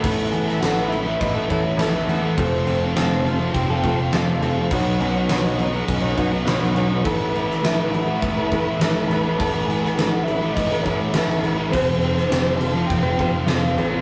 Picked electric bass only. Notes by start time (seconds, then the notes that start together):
0.04 A1
0.34 A1
0.63 A1
1.21 A1
1.50 A1
1.80 A1
2.08 A1
2.37 F1
2.67 F1
2.97 F1
3.54 F1
3.84 F1
4.14 F1
4.42 F1
4.71 B1
5.00 B1
5.30 B1
5.88 B1
6.17 B1
6.47 B1
6.76 B1
7.05 A1
7.35 A1
7.63 A1
8.22 A1
8.52 A1
8.80 A1
9.10 A1
9.39 A1
9.69 A1
9.99 A1
10.57 A1
10.85 A1
11.16 A1
11.45 A1
11.73 F1
12.01 F1
12.31 F1
12.90 F1
13.19 F1
13.47 F1
13.77 A1